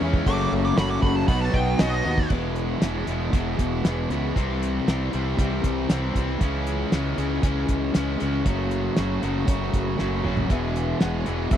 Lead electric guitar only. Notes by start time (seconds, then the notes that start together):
0.27 D6
0.65 D6
0.78 B5
0.91 D6
1.02 B5
1.16 A5
1.28 B5
1.41 A5
1.54 G5
1.80 D#5